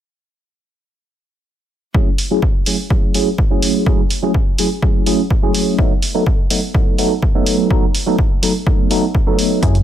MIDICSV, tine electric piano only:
0, 0, Header, 1, 2, 480
1, 0, Start_track
1, 0, Tempo, 480000
1, 1947, Time_signature, 4, 2, 24, 8
1, 9832, End_track
2, 0, Start_track
2, 0, Title_t, "Tine electric piano"
2, 0, Program_c, 0, 4
2, 1944, Note_on_c, 0, 54, 84
2, 1946, Note_on_c, 0, 57, 77
2, 1948, Note_on_c, 0, 61, 77
2, 1950, Note_on_c, 0, 64, 80
2, 1953, Note_on_c, 0, 68, 97
2, 2082, Note_off_c, 0, 54, 0
2, 2082, Note_off_c, 0, 57, 0
2, 2083, Note_off_c, 0, 61, 0
2, 2084, Note_off_c, 0, 64, 0
2, 2086, Note_off_c, 0, 68, 0
2, 2308, Note_on_c, 0, 54, 84
2, 2310, Note_on_c, 0, 57, 76
2, 2311, Note_on_c, 0, 61, 79
2, 2314, Note_on_c, 0, 64, 78
2, 2315, Note_on_c, 0, 68, 93
2, 2390, Note_off_c, 0, 54, 0
2, 2391, Note_off_c, 0, 57, 0
2, 2392, Note_off_c, 0, 61, 0
2, 2393, Note_off_c, 0, 64, 0
2, 2394, Note_off_c, 0, 68, 0
2, 2666, Note_on_c, 0, 54, 75
2, 2667, Note_on_c, 0, 57, 68
2, 2670, Note_on_c, 0, 61, 68
2, 2670, Note_on_c, 0, 64, 69
2, 2674, Note_on_c, 0, 68, 83
2, 2752, Note_off_c, 0, 54, 0
2, 2752, Note_off_c, 0, 57, 0
2, 2754, Note_off_c, 0, 61, 0
2, 2754, Note_off_c, 0, 64, 0
2, 2756, Note_off_c, 0, 68, 0
2, 2907, Note_on_c, 0, 54, 69
2, 2908, Note_on_c, 0, 57, 63
2, 2909, Note_on_c, 0, 61, 61
2, 2914, Note_on_c, 0, 64, 60
2, 2915, Note_on_c, 0, 68, 75
2, 3119, Note_off_c, 0, 54, 0
2, 3120, Note_off_c, 0, 57, 0
2, 3120, Note_off_c, 0, 61, 0
2, 3122, Note_off_c, 0, 64, 0
2, 3123, Note_off_c, 0, 68, 0
2, 3146, Note_on_c, 0, 54, 77
2, 3147, Note_on_c, 0, 57, 69
2, 3150, Note_on_c, 0, 61, 71
2, 3152, Note_on_c, 0, 64, 72
2, 3153, Note_on_c, 0, 68, 85
2, 3282, Note_off_c, 0, 54, 0
2, 3283, Note_off_c, 0, 57, 0
2, 3284, Note_off_c, 0, 61, 0
2, 3286, Note_off_c, 0, 64, 0
2, 3286, Note_off_c, 0, 68, 0
2, 3506, Note_on_c, 0, 54, 92
2, 3507, Note_on_c, 0, 57, 80
2, 3510, Note_on_c, 0, 61, 84
2, 3511, Note_on_c, 0, 64, 84
2, 3512, Note_on_c, 0, 68, 99
2, 3837, Note_off_c, 0, 54, 0
2, 3837, Note_off_c, 0, 57, 0
2, 3839, Note_off_c, 0, 61, 0
2, 3839, Note_off_c, 0, 64, 0
2, 3840, Note_off_c, 0, 68, 0
2, 3862, Note_on_c, 0, 54, 87
2, 3865, Note_on_c, 0, 57, 78
2, 3867, Note_on_c, 0, 61, 80
2, 3869, Note_on_c, 0, 64, 82
2, 3871, Note_on_c, 0, 68, 98
2, 4000, Note_off_c, 0, 54, 0
2, 4002, Note_off_c, 0, 57, 0
2, 4003, Note_off_c, 0, 61, 0
2, 4004, Note_off_c, 0, 64, 0
2, 4005, Note_off_c, 0, 68, 0
2, 4226, Note_on_c, 0, 54, 86
2, 4227, Note_on_c, 0, 57, 79
2, 4230, Note_on_c, 0, 61, 78
2, 4232, Note_on_c, 0, 64, 76
2, 4234, Note_on_c, 0, 68, 96
2, 4309, Note_off_c, 0, 54, 0
2, 4310, Note_off_c, 0, 57, 0
2, 4311, Note_off_c, 0, 61, 0
2, 4312, Note_off_c, 0, 64, 0
2, 4313, Note_off_c, 0, 68, 0
2, 4586, Note_on_c, 0, 54, 76
2, 4589, Note_on_c, 0, 57, 69
2, 4590, Note_on_c, 0, 61, 72
2, 4592, Note_on_c, 0, 64, 71
2, 4595, Note_on_c, 0, 68, 83
2, 4672, Note_off_c, 0, 54, 0
2, 4673, Note_off_c, 0, 57, 0
2, 4674, Note_off_c, 0, 61, 0
2, 4675, Note_off_c, 0, 64, 0
2, 4676, Note_off_c, 0, 68, 0
2, 4824, Note_on_c, 0, 54, 70
2, 4825, Note_on_c, 0, 57, 60
2, 4826, Note_on_c, 0, 61, 63
2, 4829, Note_on_c, 0, 64, 63
2, 4831, Note_on_c, 0, 68, 74
2, 5037, Note_off_c, 0, 54, 0
2, 5038, Note_off_c, 0, 57, 0
2, 5039, Note_off_c, 0, 61, 0
2, 5040, Note_off_c, 0, 64, 0
2, 5041, Note_off_c, 0, 68, 0
2, 5064, Note_on_c, 0, 54, 79
2, 5065, Note_on_c, 0, 57, 70
2, 5068, Note_on_c, 0, 61, 72
2, 5068, Note_on_c, 0, 64, 72
2, 5070, Note_on_c, 0, 68, 85
2, 5201, Note_off_c, 0, 54, 0
2, 5202, Note_off_c, 0, 57, 0
2, 5203, Note_off_c, 0, 61, 0
2, 5203, Note_off_c, 0, 64, 0
2, 5204, Note_off_c, 0, 68, 0
2, 5424, Note_on_c, 0, 54, 92
2, 5426, Note_on_c, 0, 57, 83
2, 5429, Note_on_c, 0, 61, 86
2, 5432, Note_on_c, 0, 64, 81
2, 5433, Note_on_c, 0, 68, 100
2, 5756, Note_off_c, 0, 54, 0
2, 5757, Note_off_c, 0, 57, 0
2, 5758, Note_off_c, 0, 61, 0
2, 5760, Note_off_c, 0, 64, 0
2, 5761, Note_off_c, 0, 68, 0
2, 5780, Note_on_c, 0, 54, 88
2, 5782, Note_on_c, 0, 57, 80
2, 5785, Note_on_c, 0, 59, 80
2, 5785, Note_on_c, 0, 63, 83
2, 5788, Note_on_c, 0, 69, 99
2, 5919, Note_off_c, 0, 54, 0
2, 5920, Note_off_c, 0, 57, 0
2, 5922, Note_off_c, 0, 59, 0
2, 5922, Note_off_c, 0, 63, 0
2, 5923, Note_off_c, 0, 69, 0
2, 6142, Note_on_c, 0, 54, 88
2, 6144, Note_on_c, 0, 57, 81
2, 6146, Note_on_c, 0, 59, 83
2, 6148, Note_on_c, 0, 63, 81
2, 6151, Note_on_c, 0, 69, 94
2, 6227, Note_off_c, 0, 54, 0
2, 6228, Note_off_c, 0, 57, 0
2, 6229, Note_off_c, 0, 59, 0
2, 6230, Note_off_c, 0, 63, 0
2, 6232, Note_off_c, 0, 69, 0
2, 6500, Note_on_c, 0, 54, 76
2, 6502, Note_on_c, 0, 57, 72
2, 6504, Note_on_c, 0, 59, 70
2, 6507, Note_on_c, 0, 63, 73
2, 6508, Note_on_c, 0, 69, 84
2, 6589, Note_off_c, 0, 54, 0
2, 6590, Note_off_c, 0, 57, 0
2, 6591, Note_off_c, 0, 59, 0
2, 6592, Note_off_c, 0, 63, 0
2, 6593, Note_off_c, 0, 69, 0
2, 6742, Note_on_c, 0, 54, 69
2, 6743, Note_on_c, 0, 57, 63
2, 6745, Note_on_c, 0, 59, 64
2, 6747, Note_on_c, 0, 63, 63
2, 6750, Note_on_c, 0, 69, 74
2, 6956, Note_off_c, 0, 54, 0
2, 6957, Note_off_c, 0, 57, 0
2, 6958, Note_off_c, 0, 59, 0
2, 6959, Note_off_c, 0, 63, 0
2, 6960, Note_off_c, 0, 69, 0
2, 6982, Note_on_c, 0, 54, 78
2, 6984, Note_on_c, 0, 57, 73
2, 6987, Note_on_c, 0, 59, 72
2, 6988, Note_on_c, 0, 63, 71
2, 6990, Note_on_c, 0, 69, 88
2, 7120, Note_off_c, 0, 54, 0
2, 7121, Note_off_c, 0, 57, 0
2, 7123, Note_off_c, 0, 59, 0
2, 7123, Note_off_c, 0, 63, 0
2, 7124, Note_off_c, 0, 69, 0
2, 7346, Note_on_c, 0, 54, 88
2, 7349, Note_on_c, 0, 57, 80
2, 7351, Note_on_c, 0, 59, 84
2, 7353, Note_on_c, 0, 63, 83
2, 7355, Note_on_c, 0, 69, 103
2, 7677, Note_off_c, 0, 54, 0
2, 7678, Note_off_c, 0, 57, 0
2, 7679, Note_off_c, 0, 59, 0
2, 7680, Note_off_c, 0, 63, 0
2, 7681, Note_off_c, 0, 69, 0
2, 7705, Note_on_c, 0, 54, 90
2, 7706, Note_on_c, 0, 57, 79
2, 7708, Note_on_c, 0, 59, 80
2, 7710, Note_on_c, 0, 63, 82
2, 7713, Note_on_c, 0, 69, 99
2, 7842, Note_off_c, 0, 54, 0
2, 7842, Note_off_c, 0, 57, 0
2, 7843, Note_off_c, 0, 59, 0
2, 7844, Note_off_c, 0, 63, 0
2, 7846, Note_off_c, 0, 69, 0
2, 8066, Note_on_c, 0, 54, 86
2, 8068, Note_on_c, 0, 57, 82
2, 8070, Note_on_c, 0, 59, 79
2, 8072, Note_on_c, 0, 63, 80
2, 8074, Note_on_c, 0, 69, 96
2, 8149, Note_off_c, 0, 54, 0
2, 8150, Note_off_c, 0, 57, 0
2, 8151, Note_off_c, 0, 59, 0
2, 8152, Note_off_c, 0, 63, 0
2, 8153, Note_off_c, 0, 69, 0
2, 8422, Note_on_c, 0, 54, 76
2, 8424, Note_on_c, 0, 57, 70
2, 8426, Note_on_c, 0, 59, 70
2, 8428, Note_on_c, 0, 63, 69
2, 8430, Note_on_c, 0, 69, 85
2, 8510, Note_off_c, 0, 54, 0
2, 8510, Note_off_c, 0, 57, 0
2, 8512, Note_off_c, 0, 59, 0
2, 8513, Note_off_c, 0, 63, 0
2, 8514, Note_off_c, 0, 69, 0
2, 8665, Note_on_c, 0, 54, 67
2, 8667, Note_on_c, 0, 57, 62
2, 8669, Note_on_c, 0, 59, 63
2, 8671, Note_on_c, 0, 63, 63
2, 8673, Note_on_c, 0, 69, 76
2, 8878, Note_off_c, 0, 54, 0
2, 8879, Note_off_c, 0, 57, 0
2, 8880, Note_off_c, 0, 59, 0
2, 8881, Note_off_c, 0, 63, 0
2, 8882, Note_off_c, 0, 69, 0
2, 8904, Note_on_c, 0, 54, 79
2, 8906, Note_on_c, 0, 57, 74
2, 8908, Note_on_c, 0, 59, 72
2, 8910, Note_on_c, 0, 63, 75
2, 8913, Note_on_c, 0, 69, 88
2, 9041, Note_off_c, 0, 54, 0
2, 9042, Note_off_c, 0, 57, 0
2, 9043, Note_off_c, 0, 59, 0
2, 9044, Note_off_c, 0, 63, 0
2, 9046, Note_off_c, 0, 69, 0
2, 9267, Note_on_c, 0, 54, 91
2, 9268, Note_on_c, 0, 57, 83
2, 9271, Note_on_c, 0, 59, 85
2, 9272, Note_on_c, 0, 63, 83
2, 9274, Note_on_c, 0, 69, 103
2, 9597, Note_off_c, 0, 54, 0
2, 9598, Note_off_c, 0, 57, 0
2, 9599, Note_off_c, 0, 59, 0
2, 9600, Note_off_c, 0, 63, 0
2, 9601, Note_off_c, 0, 69, 0
2, 9624, Note_on_c, 0, 54, 88
2, 9625, Note_on_c, 0, 57, 80
2, 9628, Note_on_c, 0, 61, 82
2, 9629, Note_on_c, 0, 64, 81
2, 9632, Note_on_c, 0, 68, 96
2, 9761, Note_off_c, 0, 54, 0
2, 9762, Note_off_c, 0, 57, 0
2, 9763, Note_off_c, 0, 61, 0
2, 9764, Note_off_c, 0, 64, 0
2, 9766, Note_off_c, 0, 68, 0
2, 9832, End_track
0, 0, End_of_file